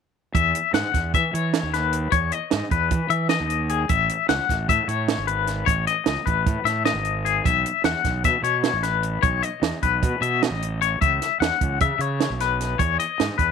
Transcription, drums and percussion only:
0.35 kick medium
0.35 closed hi-hat medium
0.55 closed hi-hat medium
0.74 snare loud
0.74 closed hi-hat medium
0.94 kick medium
0.94 snare soft
0.94 closed hi-hat medium
1.14 kick medium
1.14 closed hi-hat medium
1.35 closed hi-hat medium
1.54 snare loud
1.54 closed hi-hat medium
1.74 snare soft
1.74 closed hi-hat medium
1.93 closed hi-hat medium
2.12 kick medium
2.12 closed hi-hat medium
2.32 closed hi-hat medium
2.51 snare loud
2.51 closed hi-hat medium
2.71 kick medium
2.71 closed hi-hat medium
2.91 kick medium
2.91 closed hi-hat medium
3.10 closed hi-hat soft
3.29 snare medium
3.29 closed hi-hat medium
3.50 closed hi-hat medium
3.69 closed hi-hat soft
3.89 kick medium
3.89 closed hi-hat medium
4.09 closed hi-hat medium
4.29 snare loud
4.29 closed hi-hat medium
4.49 kick medium
4.49 snare soft
4.49 closed hi-hat medium
4.69 kick medium
4.69 closed hi-hat medium
4.89 closed hi-hat medium
5.08 snare medium
5.08 closed hi-hat medium
5.28 closed hi-hat medium
5.47 snare soft
5.47 closed hi-hat medium
5.67 kick medium
5.67 closed hi-hat medium
5.87 closed hi-hat medium
6.06 snare loud
6.06 closed hi-hat medium
6.27 kick medium
6.27 closed hi-hat soft
6.46 kick medium
6.46 closed hi-hat medium
6.66 snare soft
6.66 closed hi-hat medium
6.85 snare medium
6.85 closed hi-hat medium
7.05 closed hi-hat medium
7.26 closed hi-hat soft
7.45 kick medium
7.45 closed hi-hat medium
7.66 closed hi-hat medium
7.84 snare loud
7.84 closed hi-hat medium
8.05 kick medium
8.05 snare soft
8.05 closed hi-hat medium
8.24 kick medium
8.24 closed hi-hat medium
8.44 closed hi-hat medium
8.64 snare medium
8.64 closed hi-hat medium
8.83 snare soft
8.83 closed hi-hat medium
9.03 closed hi-hat medium
9.23 kick medium
9.23 closed hi-hat medium
9.43 closed hi-hat medium
9.63 snare loud
9.63 closed hi-hat medium
9.83 kick medium
9.83 closed hi-hat medium
10.03 kick medium
10.03 closed hi-hat medium
10.23 closed hi-hat medium
10.43 snare loud
10.43 closed hi-hat medium
10.62 closed hi-hat medium
10.82 closed hi-hat soft
11.02 kick medium
11.02 closed hi-hat medium
11.22 snare soft
11.22 closed hi-hat medium
11.42 snare loud
11.42 closed hi-hat medium
11.61 kick medium
11.61 closed hi-hat medium
11.80 kick loud
11.80 closed hi-hat medium
12.00 closed hi-hat medium
12.20 snare medium
12.20 closed hi-hat medium
12.40 snare soft
12.40 closed hi-hat medium
12.61 snare soft
12.61 closed hi-hat medium
12.80 kick medium
12.80 closed hi-hat medium
13.00 closed hi-hat medium
13.20 snare loud
13.20 closed hi-hat medium
13.39 kick medium
13.39 closed hi-hat medium

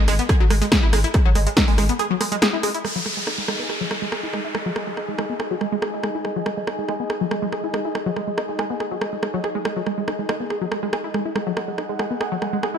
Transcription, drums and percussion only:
0.08 cross-stick medium
0.08 open hi-hat loud
0.19 closed hi-hat medium
0.29 kick loud
0.29 cross-stick loud
0.29 closed hi-hat medium
0.50 cross-stick medium
0.50 open hi-hat loud
0.62 closed hi-hat medium
0.72 kick loud
0.72 cross-stick medium
0.72 snare loud
0.72 closed hi-hat medium
0.93 cross-stick loud
0.93 open hi-hat loud
1.04 closed hi-hat medium
1.14 kick loud
1.14 cross-stick medium
1.14 closed hi-hat medium
1.35 cross-stick medium
1.35 open hi-hat loud
1.47 closed hi-hat medium
1.57 kick loud
1.57 cross-stick medium
1.57 snare loud
1.57 closed hi-hat medium
1.68 open hi-hat medium
1.78 cross-stick medium
1.78 open hi-hat loud
1.89 closed hi-hat medium
1.99 cross-stick medium
1.99 closed hi-hat medium
2.21 cross-stick medium
2.21 open hi-hat loud
2.32 closed hi-hat medium
2.42 cross-stick medium
2.42 snare loud
2.42 closed hi-hat medium
2.63 cross-stick medium
2.63 open hi-hat loud
2.74 closed hi-hat medium
2.85 cross-stick medium
3.06 cross-stick medium
3.27 cross-stick medium
3.48 cross-stick medium
3.70 cross-stick medium
3.91 cross-stick medium
4.12 cross-stick medium
4.33 cross-stick medium
4.55 cross-stick medium
4.76 cross-stick medium
4.97 cross-stick medium
5.18 cross-stick medium
5.40 cross-stick medium
5.61 cross-stick medium
5.82 cross-stick medium
6.03 cross-stick medium
6.25 cross-stick medium
6.46 cross-stick medium
6.67 cross-stick medium
6.89 cross-stick medium
7.10 cross-stick medium
7.31 cross-stick medium
7.52 cross-stick medium
7.74 cross-stick medium
7.95 cross-stick medium
8.16 cross-stick medium
8.38 cross-stick medium
8.59 cross-stick medium
8.80 cross-stick medium
9.01 cross-stick medium
9.23 cross-stick medium
9.44 cross-stick medium
9.65 cross-stick medium
9.86 cross-stick medium
10.08 cross-stick medium
10.29 cross-stick loud
10.50 cross-stick medium
10.72 cross-stick medium
10.93 cross-stick loud
11.14 cross-stick medium
11.36 cross-stick medium
11.57 cross-stick medium
11.78 cross-stick medium
11.99 cross-stick medium
12.21 cross-stick medium
12.42 cross-stick medium
12.63 cross-stick medium

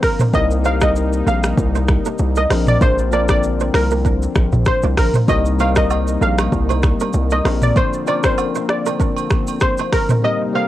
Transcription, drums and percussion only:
0.03 finger snap medium
0.03 kick medium
0.03 cross-stick medium
0.03 open hi-hat medium
0.03 shaker medium
0.19 mid tom loud
0.19 shaker medium
0.34 kick loud
0.34 shaker medium
0.51 shaker medium
0.65 shaker medium
0.81 finger snap medium
0.81 kick medium
0.81 cross-stick loud
0.81 shaker loud
0.96 shaker medium
1.13 shaker medium
1.27 shaker medium
1.44 finger snap medium
1.44 cross-stick loud
1.44 shaker loud
1.57 kick loud
1.57 shaker medium
1.75 shaker medium
1.88 finger snap medium
1.88 kick loud
1.88 cross-stick medium
1.88 shaker medium
2.05 shaker medium
2.18 shaker medium
2.36 shaker medium
2.50 finger snap medium
2.50 cross-stick medium
2.50 open hi-hat medium
2.50 shaker medium
2.67 mid tom loud
2.67 shaker medium
2.81 kick loud
2.81 shaker medium
2.98 shaker medium
3.12 shaker medium
3.29 finger snap medium
3.29 kick medium
3.29 cross-stick loud
3.29 shaker loud
3.43 shaker medium
3.60 shaker medium
3.74 finger snap medium
3.74 cross-stick loud
3.74 open hi-hat medium
3.74 shaker medium
3.91 shaker loud
4.05 kick medium
4.05 shaker medium
4.22 shaker medium
4.35 finger snap medium
4.35 kick loud
4.35 cross-stick medium
4.35 shaker medium
4.53 mid tom medium
4.53 shaker medium
4.66 finger snap medium
4.66 kick medium
4.66 cross-stick loud
4.66 shaker medium
4.83 shaker medium
4.98 finger snap medium
4.98 kick medium
4.98 cross-stick loud
4.98 open hi-hat medium
4.98 shaker medium
5.14 mid tom loud
5.14 shaker medium
5.28 kick loud
5.28 high agogo medium
5.28 shaker medium
5.46 shaker medium
5.59 high agogo medium
5.59 shaker medium
5.76 finger snap medium
5.76 kick medium
5.76 cross-stick loud
5.76 shaker loud
5.91 high agogo medium
5.91 low woodblock medium
5.91 shaker medium
6.08 shaker medium
6.22 shaker medium
6.38 finger snap medium
6.38 cross-stick loud
6.38 high agogo medium
6.38 shaker loud
6.52 kick medium
6.52 shaker medium
6.69 high agogo medium
6.69 shaker medium
6.83 finger snap medium
6.83 kick loud
6.83 cross-stick medium
6.83 shaker soft
7.00 high agogo medium
7.00 shaker medium
7.13 shaker medium
7.30 high agogo medium
7.30 shaker medium
7.45 finger snap medium
7.45 cross-stick medium
7.45 open hi-hat medium
7.45 shaker medium
7.62 mid tom medium
7.62 shaker medium
7.76 kick loud
7.76 high agogo medium
7.76 shaker medium
7.93 shaker medium
8.07 high agogo medium
8.07 shaker medium
8.24 finger snap medium
8.24 kick medium
8.24 cross-stick loud
8.24 shaker loud
8.38 high agogo medium
8.38 low woodblock medium
8.38 shaker medium
8.55 shaker medium
8.69 finger snap medium
8.69 cross-stick loud
8.69 shaker medium
8.86 high agogo medium
8.86 shaker loud
9.00 kick medium
9.00 shaker medium
9.17 high agogo medium
9.17 shaker medium
9.30 finger snap medium
9.30 kick loud
9.30 cross-stick medium
9.30 shaker medium
9.47 high agogo medium
9.47 shaker medium
9.60 finger snap medium
9.60 kick medium
9.60 cross-stick loud
9.60 shaker medium
9.78 high agogo medium
9.78 shaker medium
9.92 finger snap medium
9.92 kick medium
9.92 cross-stick medium
9.92 open hi-hat medium
9.92 shaker medium
10.09 mid tom loud
10.09 shaker medium

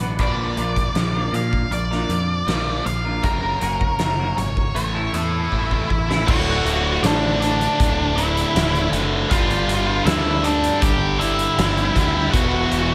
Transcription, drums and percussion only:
0.00 closed hi-hat medium
0.19 kick loud
0.19 closed hi-hat medium
0.57 closed hi-hat medium
0.76 kick medium
0.76 closed hi-hat medium
0.95 snare loud
0.95 closed hi-hat medium
1.34 closed hi-hat medium
1.53 kick medium
1.72 closed hi-hat medium
1.92 snare soft
2.10 closed hi-hat medium
2.48 snare loud
2.48 closed hi-hat soft
2.86 closed hi-hat medium
3.24 kick loud
3.24 closed hi-hat medium
3.61 closed hi-hat medium
3.81 kick medium
3.99 snare loud
3.99 closed hi-hat medium
4.38 closed hi-hat medium
4.57 kick medium
4.76 closed hi-hat medium
5.14 closed hi-hat medium
5.52 kick soft
5.71 kick medium
5.90 kick medium
6.11 snare medium
6.28 kick loud
6.28 crash loud
6.66 closed hi-hat medium
7.04 snare loud
7.04 closed hi-hat loud
7.42 closed hi-hat medium
7.61 closed hi-hat soft
7.80 kick loud
7.80 closed hi-hat loud
8.18 closed hi-hat medium
8.37 closed hi-hat soft
8.56 snare loud
8.56 closed hi-hat loud
8.75 closed hi-hat soft
8.93 closed hi-hat medium
9.31 kick loud
9.31 closed hi-hat loud
9.50 closed hi-hat soft
9.69 closed hi-hat medium
10.07 snare loud
10.07 closed hi-hat loud
10.44 closed hi-hat medium
10.64 closed hi-hat soft
10.82 kick loud
10.82 closed hi-hat loud
11.21 closed hi-hat medium
11.39 closed hi-hat medium
11.59 snare loud
11.59 closed hi-hat loud
11.77 closed hi-hat soft
11.96 kick medium
11.96 snare soft
11.96 closed hi-hat medium
12.34 kick loud
12.34 closed hi-hat loud
12.72 closed hi-hat medium

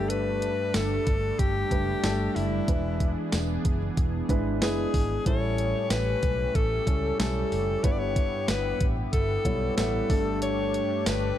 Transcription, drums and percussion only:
0.10 closed hi-hat loud
0.42 closed hi-hat medium
0.74 snare loud
0.74 closed hi-hat medium
0.74 tambourine medium
1.07 kick medium
1.07 closed hi-hat medium
1.39 kick medium
1.39 closed hi-hat medium
1.71 kick medium
1.71 closed hi-hat medium
2.04 snare loud
2.04 closed hi-hat medium
2.04 tambourine medium
2.36 open hi-hat medium
2.68 kick loud
2.68 closed hi-hat loud
3.00 kick medium
3.00 closed hi-hat medium
3.32 snare loud
3.32 closed hi-hat medium
3.32 tambourine medium
3.65 kick medium
3.65 closed hi-hat medium
3.97 kick medium
3.97 closed hi-hat medium
4.29 kick medium
4.29 closed hi-hat medium
4.62 snare loud
4.62 closed hi-hat medium
4.62 tambourine medium
4.94 kick medium
4.94 open hi-hat medium
5.26 kick loud
5.26 closed hi-hat medium
5.58 closed hi-hat medium
5.90 snare loud
5.90 closed hi-hat medium
5.90 tambourine medium
6.23 kick medium
6.23 closed hi-hat medium
6.55 kick medium
6.55 closed hi-hat medium
6.87 kick medium
6.87 closed hi-hat medium
7.20 snare loud
7.20 closed hi-hat medium
7.20 tambourine medium
7.52 open hi-hat medium
7.84 kick loud
7.84 closed hi-hat loud
8.16 kick medium
8.16 closed hi-hat medium
8.48 snare loud
8.48 closed hi-hat medium
8.48 tambourine medium
8.81 kick medium
8.81 closed hi-hat medium
9.13 kick medium
9.13 closed hi-hat medium
9.45 kick medium
9.45 closed hi-hat medium
9.78 snare loud
9.78 closed hi-hat medium
9.78 tambourine medium
10.10 kick loud
10.10 open hi-hat medium
10.42 closed hi-hat loud
10.74 closed hi-hat medium
11.06 snare loud
11.06 closed hi-hat loud
11.06 tambourine medium

